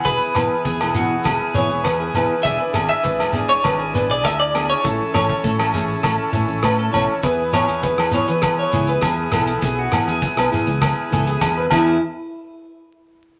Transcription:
Already playing: transistor combo organ B3 E4 G#4
0.05 fingered electric bass E1, clean electric guitar G#4 B4, kick, shekere
0.35 fingered electric bass E1, clean electric guitar E3 B3 E4 G#4 B4, cross-stick, closed hi-hat, low agogo, shekere
0.65 fingered electric bass E2, clean electric guitar G#4, kick, shekere
0.81 fingered electric bass E1, clean electric guitar B3 E4 G#4, cross-stick, low agogo
0.94 clean electric guitar E3 F#4, closed hi-hat, shekere
0.98 clean electric guitar B3 E4 G#4
1.23 fingered electric bass E1, clean electric guitar G#4, kick, cross-stick, low agogo, shekere
1.54 fingered electric bass E1, clean electric guitar E3 B3 E4 G#4 C#5, closed hi-hat, shekere
1.69 fingered electric bass E1, clean electric guitar G#4, muted clean electric guitar stroke, shekere
1.73 clean electric guitar B3
1.84 fingered electric bass E2, clean electric guitar B4, kick, cross-stick, low agogo, shekere
2.00 clean electric guitar G#4
2.14 fingered electric bass E1, clean electric guitar E3 B3 E4 G#4 B4, closed hi-hat, low agogo, shekere
2.43 fingered electric bass E1, clean electric guitar B3 D4 G#4 E5, transistor combo organ D4, kick, shekere
2.59 clean electric guitar B4
2.74 fingered electric bass G#1, clean electric guitar B3 D4 G#4, cross-stick, closed hi-hat, low agogo, shekere
2.89 clean electric guitar E5, shekere
3.03 fingered electric bass G#1, clean electric guitar B4, kick, shekere
3.19 fingered electric bass E1, clean electric guitar D4 G#4, cross-stick, low agogo
3.33 clean electric guitar B3 D4 G#4, closed hi-hat, shekere
3.49 clean electric guitar C#5, shekere
3.64 fingered electric bass G#1, clean electric guitar B4, kick, cross-stick, low agogo, shekere
3.79 clean electric guitar G#4
3.94 clean electric guitar B3 D4 G#4 B4, closed hi-hat, shekere
4.09 fingered electric bass B1, clean electric guitar D4 G#4 D5, shekere
4.24 fingered electric bass D2, clean electric guitar E5, kick, cross-stick, low agogo, shekere
4.40 clean electric guitar D5
4.54 clean electric guitar B3 D4 G#4, cross-stick, closed hi-hat, low agogo
4.70 clean electric guitar C#5
4.84 fingered electric bass A1, clean electric guitar E3 A3 C#4 A4, transistor combo organ C#4 A4, kick, shekere
5.14 fingered electric bass A1, clean electric guitar E3 A3 C#4 A4 C#5, cross-stick, closed hi-hat, low agogo, shekere
5.29 kick, shekere
5.44 fingered electric bass A2, clean electric guitar A4, kick, shekere
5.58 fingered electric bass A1, clean electric guitar C#4 A4, cross-stick, low agogo
5.63 clean electric guitar A3
5.73 clean electric guitar E3 A3 C#4 G#4 A4, closed hi-hat, shekere
5.90 shekere
6.03 fingered electric bass A1, clean electric guitar A4, kick, cross-stick, low agogo, shekere
6.32 fingered electric bass A1, clean electric guitar E3 A3 C#4 A4, muted clean electric guitar stroke, closed hi-hat, shekere
6.48 fingered electric bass A1, clean electric guitar A3 C#4 A4, shekere
6.63 fingered electric bass A2, clean electric guitar B4, kick, cross-stick, low agogo, shekere
6.79 clean electric guitar A4
6.92 fingered electric bass B1, clean electric guitar E3 A3 C#4 A4 C#5, closed hi-hat, low agogo, shekere
7.23 fingered electric bass E2, clean electric guitar E3 B3 E4 G#4 B4, transistor combo organ B3 E4 G#4, kick, closed hi-hat, shekere
7.53 clean electric guitar E3 B3 E4 G#4 C#5, cross-stick, closed hi-hat, low agogo, shekere
7.67 fingered electric bass E2, clean electric guitar B3 E4 G#4, closed hi-hat
7.82 clean electric guitar B4, kick, closed hi-hat, shekere
7.98 fingered electric bass E2, clean electric guitar B3 E4 G#4, cross-stick, low agogo
8.11 clean electric guitar E3 B3 E4 G#4 C#5, closed hi-hat, shekere
8.27 fingered electric bass E3, clean electric guitar B4, closed hi-hat, shekere
8.42 kick, cross-stick, closed hi-hat, low agogo, shekere
8.59 clean electric guitar C#5
8.72 fingered electric bass C#2, clean electric guitar E3 B3 E4 G#4, closed hi-hat, shekere
8.87 clean electric guitar B4, closed hi-hat
9.01 fingered electric bass E2, clean electric guitar G#4, kick, cross-stick, closed hi-hat, low agogo, shekere
9.32 fingered electric bass B1, clean electric guitar E3 B3 E4 A4, cross-stick, closed hi-hat, low agogo, shekere
9.36 clean electric guitar G#4
9.47 closed hi-hat
9.61 fingered electric bass B1, clean electric guitar G#4, kick, closed hi-hat, shekere
9.79 clean electric guitar F#4
9.92 clean electric guitar E3 B3 E4 G#4, cross-stick, closed hi-hat, low agogo, shekere
10.07 fingered electric bass E2, clean electric guitar B3 E4 G#4, closed hi-hat
10.22 kick, closed hi-hat, shekere
10.36 fingered electric bass B1, clean electric guitar B3 E4 G#4 B4, cross-stick, low agogo
10.51 clean electric guitar E3 B3 E4 G#4, closed hi-hat, shekere
10.67 fingered electric bass C#2, closed hi-hat, shekere
10.82 muted clean electric guitar stroke, kick, cross-stick, closed hi-hat, low agogo, shekere
11.10 fingered electric bass C#2, clean electric guitar E3 B3 E4 G#4 A4, closed hi-hat, shekere
11.27 clean electric guitar G#4, closed hi-hat
11.41 fingered electric bass E2, kick, cross-stick, closed hi-hat, low agogo, shekere
11.57 clean electric guitar B4
11.70 fingered electric bass E2, clean electric guitar E3 B3 E4 G#4, transistor combo organ B3 E4 G#4, kick, crash, low agogo, shekere

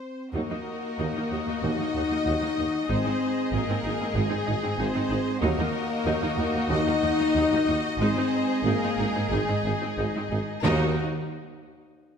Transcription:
Already playing: french horn section C4, violin section C5
0.33 cello section D#2, double bass section D#2, tuba D#2, viola section F#3 D#4, french horn section A#3, string section A#3 D#4 F#4 D#5, violin section F#4 A#4 D#5
0.50 cello section D#2, viola section A#3 D#4
0.98 double bass section D#2, cello section D#2, tuba D#2, viola section F#3 D#4
1.15 cello section D#2, viola section A#3 D#4
1.31 tuba D#2, double bass section D#2, cello section D#2, viola section D#4
1.47 cello section D#2, viola section A#3 D#4
1.62 cello section D#2, double bass section D#2, tuba D#2, viola section F#3 D#4, french horn section D#4, violin section D#5
1.78 cello section D#2, viola section A#3 D#4
1.95 cello section D#2, double bass section D#2, tuba D#2, viola section D#4
2.10 cello section D#2, viola section A#3 D#4
2.25 cello section D#2, double bass section D#2, tuba D#2, viola section F#3 D#4
2.42 cello section D#2, viola section A#3 D#4
2.58 cello section D#2, double bass section D#2, tuba D#2, viola section D#4
2.89 double bass section G#1, tuba G#1, cello section G#2, viola section G#3 D#4, string section G#3 G#4, french horn section C4, violin section G#4 C5
3.05 cello section G#2, viola section C4 D#4
3.52 double bass section G#1, tuba G#1, cello section G#2, viola section G#3 D#4, french horn section A#3, violin section A#4
3.68 cello section G#2, viola section C4 D#4
3.84 double bass section G#1, tuba G#1, cello section G#2, viola section D#4
4.00 cello section G#2, viola section C4 D#4
4.14 double bass section G#1, tuba G#1, cello section G#2, french horn section G#3, viola section G#3 D#4, violin section G#4
4.29 cello section G#2, viola section C4 D#4
4.46 double bass section G#1, tuba G#1, cello section G#2, viola section D#4
4.62 cello section G#2, viola section C4 D#4
4.77 double bass section G#1, tuba G#1, cello section G#2, viola section G#3 D#4, french horn section C4
4.82 violin section C5
4.94 cello section G#2, viola section C4 D#4
5.10 double bass section G#1, tuba G#1, cello section G#2, viola section D#4
5.41 double bass section D#2, cello section D#2, tuba D#2, viola section F#3 D#4, french horn section A#3, string section A#3 D#4 F#4 D#5, violin section F#4 A#4 D#5
5.58 cello section D#2, viola section A#3 D#4
6.05 double bass section D#2, tuba D#2, cello section D#2, viola section F#3 D#4
6.22 cello section D#2, viola section A#3 D#4
6.37 double bass section D#2, cello section D#2, tuba D#2, viola section D#4
6.54 cello section D#2, viola section A#3 D#4
6.70 double bass section D#2, cello section D#2, tuba D#2, viola section F#3 D#4, french horn section D#4, violin section D#5
6.87 cello section D#2, viola section A#3 D#4
7.02 double bass section D#2, cello section D#2, tuba D#2, viola section D#4
7.20 cello section D#2, viola section A#3 D#4
7.35 double bass section D#2, cello section D#2, tuba D#2, viola section F#3 D#4
7.52 cello section D#2, viola section A#3 D#4
7.68 cello section D#2, double bass section D#2, tuba D#2, viola section D#4
7.99 double bass section G#1, tuba G#1, cello section G#2, viola section G#3 D#4, string section G#3 G#4, french horn section C4, violin section G#4 C5
8.17 cello section G#2, viola section C4 D#4
8.63 double bass section G#1, tuba G#1, cello section G#2, viola section G#3 D#4, french horn section A#3
8.68 violin section A#4
8.83 cello section G#2, viola section C4 D#4
8.98 double bass section G#1, tuba G#1, cello section G#2, viola section D#4
9.16 cello section G#2, viola section C4 D#4
9.30 double bass section G#1, tuba G#1, cello section G#2, french horn section G#3, viola section G#3 D#4, violin section G#4
9.48 cello section G#2, viola section C4 D#4
9.64 double bass section G#1, tuba G#1, cello section G#2, viola section D#4
9.81 cello section G#2, viola section C4 D#4
9.98 double bass section G#1, tuba G#1, cello section G#2, viola section G#3 D#4
10.15 cello section G#2, viola section C4 D#4
10.31 double bass section G#1, tuba G#1, cello section G#2, viola section D#4
10.63 double bass section D#2, cello section D#2, tuba D#2, french horn section D#3, timpani D#3, string section A#3 D#4 F#4 D#5, viola section D#4 F#4, violin section A#4 D#5

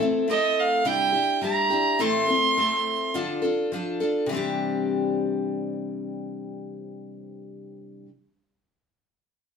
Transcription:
0.00 steel-string acoustic guitar A3 C4 E4 A4
0.28 steel-string acoustic guitar A3 C4 E4 A4, fiddle D#5
0.59 fiddle F5
0.85 steel-string acoustic guitar C3 G3 D4 E4 G4, fiddle G5
1.12 steel-string acoustic guitar D4 E4 G4
1.41 steel-string acoustic guitar G3 D4 E4 G4, fiddle A#5
1.70 steel-string acoustic guitar D4 E4 G4
1.99 steel-string acoustic guitar A2 E3 A3 C4 E4 A4, fiddle C6
2.28 steel-string acoustic guitar A3 C4 E4 A4
2.57 steel-string acoustic guitar A3 C4 E4 A4
3.14 steel-string acoustic guitar D3 F3 D4 F4 A4
3.42 steel-string acoustic guitar D4 F4 A4
3.72 steel-string acoustic guitar F3 D4 F4 A4
4.00 steel-string acoustic guitar D4 F4 A4
4.26 steel-string acoustic guitar C3 E3
4.31 steel-string acoustic guitar G3 C4 D4
4.36 steel-string acoustic guitar G4

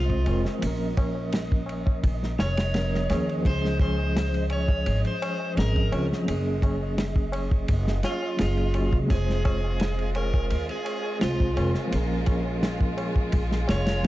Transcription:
Already playing: upright bass C2, tine electric piano G#3 C4 F4 C5, electric slide guitar F4, synth texture D#5
0.10 kick
0.25 upright bass F1, tine electric piano G#3 C4 F4, ride, tabla na
0.29 tine electric piano A#4
0.45 snare, tabla na
0.59 tine electric piano F3 A#3, ride, tabla na
0.63 upright bass A#1, tine electric piano C#4
0.67 tine electric piano A#4
0.97 kick, ride, tabla na
1.15 tabla na
1.32 snare, ride, tabla na
1.52 kick
1.66 ride, tabla na
1.86 kick, tabla na
2.03 upright bass A#1, kick, ride, tabla na
2.23 snare
2.39 upright bass F1, electric slide guitar C#5, snare, ride, tabla na
2.57 snare, ride, tabla na
2.73 tine electric piano F3 A#3 C#4, snare, ride, tabla na
2.78 tine electric piano A#4
2.95 snare
3.08 upright bass D#2, tine electric piano F3 A#3 C#4, snare, ride, tabla na
3.12 tine electric piano G#4
3.29 ride, tabla na
3.42 upright bass C#2, tine electric piano F3 G#3, kick, ride
3.46 tine electric piano C#4 G#4, electric slide guitar C5, tabla na
3.65 snare
3.79 electric slide guitar C5, kick, ride, tabla na
3.99 tabla na
4.17 snare, ride, tabla na
4.34 ride
4.50 electric slide guitar C#5, ride, tabla na
4.68 kick, tabla na
4.86 upright bass G#1, ride, tabla na
5.05 electric slide guitar C5, ride
5.22 ride, tabla na
5.40 tabla na
5.55 upright bass G#1, tine electric piano F3 C4 C#4, electric slide guitar A#4, snare, ride, tabla na
5.59 tine electric piano G#4
5.76 kick
5.90 upright bass C#2, tine electric piano F3 C4 C#4, ride, tabla na
5.94 tine electric piano F4
6.11 snare, tabla na
6.23 tine electric piano F#3 A#3
6.28 upright bass F#1, tine electric piano C#4 G#4, ride, tabla na
6.62 kick, ride, tabla na
6.81 tabla na
6.98 snare, ride, tabla na
7.16 kick
7.32 ride, tabla na
7.51 kick, tabla na
7.68 upright bass F#1, kick, ride, tabla na
7.87 snare
8.03 electric slide guitar F4, snare, ride, tabla na
8.22 tabla na
8.37 upright bass F#1, tine electric piano F#3 A#3 C#4 G#4, snare, ride, tabla na
8.57 ride
8.72 tine electric piano F#3 A#3 C#4, ride, tabla na
8.77 tine electric piano F#4
8.93 upright bass C#2, kick, tabla na
9.06 tine electric piano G#3 C4, tabla na
9.10 upright bass F1, violin section G#3 F4, tine electric piano F4, electric slide guitar G#4, kick, ride
9.14 tine electric piano C5
9.30 snare
9.45 electric slide guitar G#4, kick, ride, tabla na
9.64 tabla na
9.80 snare, ride, tabla na
9.99 ride
10.15 electric slide guitar A#4, ride, tabla na
10.34 kick, tabla na
10.50 upright bass D#2, ride, tabla na
10.69 electric slide guitar G#4, ride
10.85 ride, tabla na
11.04 tabla na
11.20 upright bass C2, tine electric piano G#3 C4 F4, electric slide guitar F4, snare, ride, tabla na
11.24 tine electric piano C5
11.40 kick
11.55 upright bass F1, tine electric piano G#3 C4 F4 A#4, ride, tabla na
11.74 snare, tabla na
11.88 tine electric piano F3 A#3
11.92 upright bass A#1, tine electric piano C#4, ride, tabla na
11.96 tine electric piano A#4
12.26 kick, ride, tabla na
12.45 tabla na
12.62 snare, ride, tabla na
12.81 kick
12.97 ride, tabla na
13.15 kick, tabla na
13.32 upright bass A#1, kick, ride, tabla na
13.52 snare
13.68 upright bass F1, electric slide guitar C#5, snare, ride, tabla na
13.86 snare, ride, tabla na
14.03 tine electric piano F3, tabla na

